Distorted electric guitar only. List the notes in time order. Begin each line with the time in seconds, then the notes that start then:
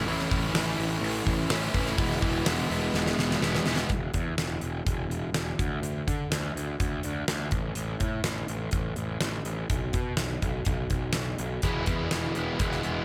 0.05 A2 E3 A3 C#4 E4
0.30 A3 C#4 E4
0.54 A2 E3 A3 C#4 E4
0.77 A3 C#4 E4
1.49 E3 A3 C#4 E4
1.74 A3 C#4 E4
1.98 E3 G#3 B3 E4
2.21 G#3 B3 E4
2.45 E3 G#3 B3 E4
2.70 G#3 B3 E4
3.41 E3 G#3 B3 E4
3.67 G#3 B3 E4
11.63 E3 G#3 B3 E4
12.36 G#3 B3 E4
12.59 E3 G#3 B3 E4
12.82 G#3 B3 E4